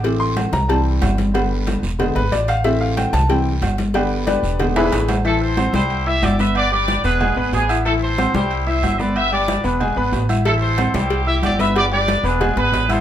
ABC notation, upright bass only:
X:1
M:4/4
L:1/8
Q:1/4=184
K:Am
V:1 name="Upright bass" clef=bass
A,,,3 C,,3 G,,,2- | G,,,3 E,,,2 ^G,,, A,,,2- | A,,,3 C,,3 G,,,2- | G,,,3 E,,,3 A,,,2- |
A,,,3 C,,3 G,,,2- | G,,,3 E,,,2 ^G,,, A,,,2- | A,,,3 C,,3 G,,,2- | G,,,3 E,,,2 ^G,,, A,,,2- |
A,,,3 C,,3 G,,,2- | G,,,3 E,,,2 ^G,,, A,,,2 |]